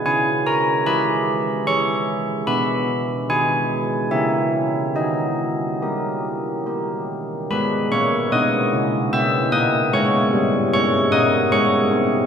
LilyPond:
\new Staff \with { instrumentName = "Church bells" } { \time 3/4 \key gis \minor \tempo 4 = 74 << { gis''8 ais''8 b''4 cis'''4 | b''4 gis''4 e''4 | dis''2 r4 | <b' b''>8 <cis'' cis'''>8 <dis'' dis'''>4 <e'' e'''>8 <dis'' dis'''>8 |
<des'' des'''>4 <des'' des'''>8 <dis'' dis'''>8 <des'' des'''>4 | } \\ { cis'4 <e' gis'>4 <e' gis'>4 | b4 <dis' gis'>4 <cis' e' ais'>4 | dis'4 <g' ais'>4 <g' ais'>4 | gis8 ais8 b8 cis'8 b8 ais8 |
gis8 g8 gis8 bes8 gis8 bis8 | } >> }